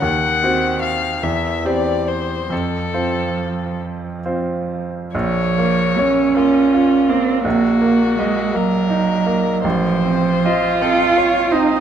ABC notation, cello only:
X:1
M:6/8
L:1/8
Q:3/8=51
K:Bbm
V:1 name="Cello" clef=bass
E,3 =E,3 | F,4- F, z | F,2 D3 C | B,2 A, G,3 |
F,2 F3 E |]